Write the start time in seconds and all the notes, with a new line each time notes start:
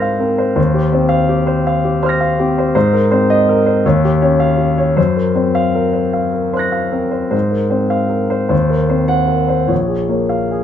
Already playing: G#2 C4 A#4 C5 F5 C6 F6 A#6
0.02 F5
0.19 C4 A#4
0.38 C5
0.56 D#2 C5
0.74 G4
0.93 C4 C5
1.09 F5
1.29 G4
1.47 C5
1.67 F5
1.84 G4
2.03 C5 C6 F6
2.09 A#6
2.20 F5
2.39 C4 G4
2.58 C5
2.75 G#2 C5
2.93 A#4
3.11 C4 C5
3.30 D#5
3.49 A#4
3.66 C5
3.85 D#2 C#5
4.05 G4
4.22 C#4 C#5
4.40 F5
4.57 G4
4.78 C#5
4.97 F#2 C5
5.16 A#4
5.35 C4 C5
5.55 F5
5.75 A#4
5.93 C5
6.13 F5
6.33 A#4
6.53 C5 C6 F#6
6.59 A#6
6.72 F5
6.92 C4 A#4
7.11 C5
7.31 G#2 C5
7.51 A#4
7.70 C4 C5
7.90 F5
8.09 A#4
8.30 C5
8.49 D#2 C5
8.69 A#4
8.89 C4 C5
9.08 F#5
9.28 A#4
9.48 C5
9.67 A#1 C#5
9.88 G#4
10.09 A#3 C#5
10.29 F5
10.51 G#4